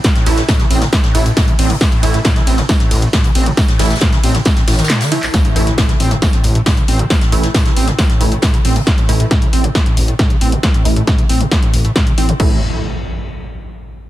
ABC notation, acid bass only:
X:1
M:4/4
L:1/16
Q:1/4=136
K:Am
V:1 name="Acid bass" clef=bass
A,, A,, A,,, A,, A,, D, C A,, A,, A,, A,,, A,, A,, D, C A,, | A,, A,, A,,, A,, A,, D, C A,, A,, A,, A,,, A,, A,, D, C A,, | A,, A,, A,,, A,, A,, D, C A,, A,, A,, A,, ^D, A,, D, C, A,,, | A,, A,, A,,, A,, A,, D, C A,, A,, A,, A,,, A,, A,, D, C A,, |
A,, A,, A,,, A,, A,, D, C A,, A,, A,, A,,, A,, A,, D, C A,, | A,, A,, A,,, A,, A,, D, C A,, A,, A,, A,,, A,, A,, D, C A,, | z A,, A,,, A,, A,, D, C A,, A,, A,, A,,, A,, A,, D, C A,, | A,,2 z12 z2 |]